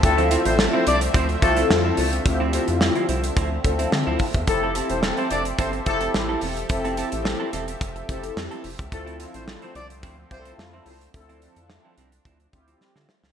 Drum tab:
HH |xxxx--xxxxxx--ox|x-xx-xxxx-xx--ox|x-xx-xxxxxxx--ox|xxxx--xxxxxx-xox|
SD |----o-------o---|----o-------o---|----o-------o---|----o-------o---|
BD |o-------o-o-----|o-------o-o---oo|o-------o-o-----|o-------o-o----o|

HH |xxxx-xxxx-xx--ox|xxxx--xxxxxx----|
SD |----o-------o---|----o-------oooo|
BD |o-------o-o-----|o-------o-o-----|